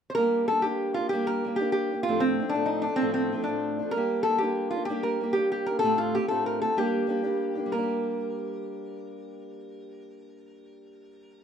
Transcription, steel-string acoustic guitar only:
0.17 0.48 G3 medium
0.17 0.49 A#3 medium
0.17 0.51 D4 medium
0.17 0.50 G4 medium
0.49 0.64 G3 soft
0.49 0.64 A#3 soft
0.49 0.64 D4 medium
0.49 0.63 G4 medium
0.64 0.97 G3 soft
0.64 0.97 A#3 medium
0.64 0.97 D4 medium
0.64 0.95 G4 medium
0.96 1.12 A#3 soft
0.96 1.12 D4 soft
0.96 1.11 G4 soft
1.12 1.43 G3 medium
1.12 1.45 A#3 medium
1.12 1.46 D4 medium
1.12 1.45 G4 medium
1.45 1.59 G3 medium
1.45 1.60 A#3 medium
1.45 1.59 D4 medium
1.45 1.58 G4 medium
1.59 1.93 G3 soft
1.59 1.92 A#3 medium
1.59 1.93 D4 medium
1.59 1.90 G4 medium
1.91 2.08 A#3 soft
1.91 2.07 D4 soft
1.91 2.06 G4 soft
2.07 2.39 D2 medium
2.07 2.39 A2 medium
2.07 2.38 F3 medium
2.07 2.40 A3 medium
2.07 2.39 C4 medium
2.07 2.42 D4 medium
2.39 2.54 F3 soft
2.39 2.53 A3 medium
2.39 2.54 C4 medium
2.39 2.53 D4 medium
2.54 2.87 D2 medium
2.54 2.86 A2 medium
2.54 2.87 F3 medium
2.54 2.86 A3 medium
2.54 2.87 C4 medium
2.54 2.85 D4 medium
2.85 3.00 F3 soft
2.85 3.00 A3 soft
2.85 3.00 C4 soft
2.85 3.00 D4 soft
3.00 3.33 D2 medium
3.00 3.33 A2 medium
3.00 3.31 F3 medium
3.00 3.33 A3 medium
3.00 3.33 C4 medium
3.00 3.35 D4 medium
3.32 3.47 F3 medium
3.32 3.47 A3 medium
3.32 3.47 C4 medium
3.32 3.46 D4 medium
3.47 3.81 D2 soft
3.47 3.80 A2 soft
3.47 3.80 F3 soft
3.47 3.80 A3 soft
3.47 3.80 C4 soft
3.47 3.79 D4 medium
3.79 3.95 F3 soft
3.79 3.95 A3 soft
3.79 3.96 C4 soft
3.79 3.94 D4 soft
3.96 4.26 G3 medium
3.96 4.27 A#3 medium
3.96 4.29 D4 medium
3.96 4.28 G4 medium
4.27 4.42 G3 medium
4.27 4.42 A#3 medium
4.27 4.41 D4 medium
4.27 4.40 G4 medium
4.41 4.75 G3 medium
4.41 4.74 A#3 medium
4.41 4.76 D4 medium
4.41 4.73 G4 medium
4.75 4.88 A#3 soft
4.75 4.89 D4 soft
4.75 4.89 G4 soft
4.89 5.19 G3 medium
4.89 5.20 A#3 medium
4.89 5.23 D4 medium
4.89 5.22 G4 medium
5.20 5.35 G3 medium
5.20 5.36 A#3 medium
5.20 5.35 D4 medium
5.20 5.34 G4 medium
5.35 5.69 G3 soft
5.35 5.68 A#3 soft
5.35 5.70 D4 soft
5.35 5.67 G4 medium
5.68 5.84 A#3 soft
5.68 5.84 D4 soft
5.68 5.83 G4 soft
5.83 6.15 D2 medium
5.83 6.15 A2 medium
5.83 6.15 D3 medium
5.83 6.16 A3 medium
5.83 6.16 C4 medium
5.83 6.16 F4 medium
6.15 6.30 D3 soft
6.15 6.29 A3 soft
6.15 6.30 C4 medium
6.15 6.29 F4 medium
6.30 6.63 D2 soft
6.30 6.63 A2 medium
6.30 6.65 D3 soft
6.30 6.62 A3 medium
6.30 6.62 C4 medium
6.30 6.61 F4 medium
6.62 6.76 D3 soft
6.62 6.77 A3 soft
6.62 6.78 C4 soft
6.62 6.77 F4 soft
6.76 7.07 G3 medium
6.76 7.09 A#3 medium
6.76 7.10 D4 medium
6.76 7.10 G4 medium
7.07 7.23 G3 medium
7.07 7.23 A#3 medium
7.07 7.23 D4 medium
7.07 7.22 G4 medium
7.23 7.66 G3 soft
7.23 7.59 A#3 soft
7.23 7.57 D4 medium
7.23 7.55 G4 medium
7.55 7.72 A#3 soft
7.55 7.71 D4 soft
7.55 7.70 G4 medium
7.66 11.44 G3 medium
7.73 11.44 A#3 medium
7.78 11.44 D4 medium
7.83 11.44 G4 medium

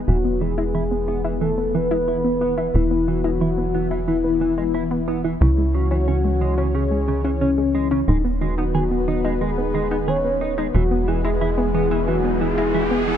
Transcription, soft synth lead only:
0.08 0.43 F#4 loud
0.41 1.41 G#4 loud
1.42 1.76 A4 loud
1.75 2.76 B4 loud
2.75 3.09 E4 loud
3.08 4.07 F#4 loud
4.08 5.04 E4 loud
5.41 5.76 E4 loud
5.75 6.76 F#4 loud
6.75 7.41 G#4 loud
7.41 7.88 C#4 loud
8.08 8.22 D#4 loud
8.41 9.43 F#4 loud
9.41 10.09 G#4 loud
10.08 10.58 C#5 loud
10.75 11.10 F#4 loud
11.08 12.09 G#4 loud
12.08 12.41 F#4 loud
12.41 13.17 G#4 loud

